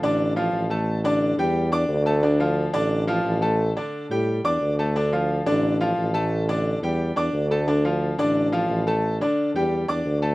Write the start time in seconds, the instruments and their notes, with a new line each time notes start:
0.01 tuba A1, grand piano D3 D4 D5
0.36 grand piano F3 F4 F5
0.53 tuba A1
0.70 grand piano A3 A4 A5
1.04 grand piano D3 D4 D5
1.38 tuba E2, grand piano G3 G4 G5
1.72 grand piano D4 D5 D6
1.89 tuba D2
2.06 grand piano A3 A4 A5
2.23 grand piano D3 D4 D5
2.40 grand piano F3 F4 F5
2.73 tuba A1, grand piano D3 D4 D5
3.07 grand piano F3 F4 F5
3.24 tuba A1
3.42 grand piano A3 A4 A5
3.76 grand piano D3 D4 D5
4.10 tuba A2, grand piano G3 G4 G5
4.44 tuba E2, grand piano D4 D5 D6
4.61 tuba D2
4.79 grand piano A3 A4 A5
4.96 grand piano D3 D4 D5
5.12 grand piano F3 F4 F5
5.46 tuba A1, grand piano D3 D4 D5
5.81 grand piano F3 F4 F5
5.97 tuba A1
6.14 grand piano A3 A4 A5
6.48 grand piano D3 D4 D5
6.82 tuba E2, grand piano G3 G4 G5
7.16 tuba E2, grand piano D4 D5 D6
7.33 tuba D2
7.51 grand piano A3 A4 A5
7.67 grand piano D3 D4 D5
7.85 grand piano F3 F4 F5
8.18 tuba A1, grand piano D3 D4 D5
8.52 grand piano F3 F4 F5
8.69 tuba A1
8.87 grand piano A3 A4 A5
9.21 grand piano D3 D4 D5
9.54 tuba E2, grand piano G3 G4 G5
9.88 tuba E2, grand piano D4 D5 D6
10.05 tuba D2
10.22 grand piano A3 A4 A5